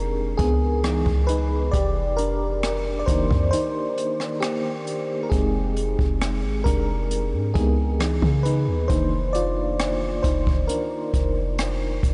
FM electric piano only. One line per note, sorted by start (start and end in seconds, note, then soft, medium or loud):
0.00 0.86 G#3 soft
0.00 0.85 C4 medium
0.00 0.36 D4 medium
0.00 0.85 D#4 medium
0.00 0.85 G4 medium
0.00 0.37 G#4 medium
0.00 0.41 A#4 medium
0.37 0.83 B3 medium
0.37 1.24 G#4 medium
0.83 1.69 E3 medium
0.83 1.70 B3 soft
0.83 1.28 D#4 medium
1.27 1.71 D#4 medium
1.27 1.74 B4 loud
1.72 2.16 G4 medium
1.72 2.14 D5 loud
2.17 2.97 D4 medium
2.17 2.96 A#4 medium
2.99 3.07 D5 medium
3.06 5.28 D#3 medium
3.06 4.42 A#3 soft
3.06 5.28 D4 medium
3.06 3.50 D#4 medium
3.06 3.50 C5 medium
3.51 4.39 D#4 medium
3.51 4.37 C5 medium
4.40 5.21 A#3 medium
4.40 5.26 G4 medium
5.23 5.31 A#4 medium
5.30 6.62 G#3 medium
5.30 6.62 C4 medium
5.30 6.62 D#4 medium
5.30 6.62 G4 medium
5.30 6.69 G#4 medium
6.64 7.52 D4 medium
6.64 7.51 A#4 loud
7.54 7.96 G#3 soft
7.54 7.99 B3 medium
7.54 7.97 D#4 medium
7.54 7.96 G4 soft
7.54 8.47 G#4 medium
8.00 8.86 E3 medium
8.00 8.86 B3 soft
8.00 8.44 D#4 medium
8.43 8.87 D#4 medium
8.43 8.90 B4 medium
8.88 10.20 D#3 medium
8.88 10.20 A#3 soft
8.88 10.20 D4 medium
8.88 9.32 D#4 medium
8.88 9.35 C5 medium
9.33 10.21 F4 medium
9.33 10.19 D5 medium
10.23 10.66 D#4 medium
10.23 10.70 C5 medium
10.68 12.00 D4 medium
10.68 11.99 A#4 medium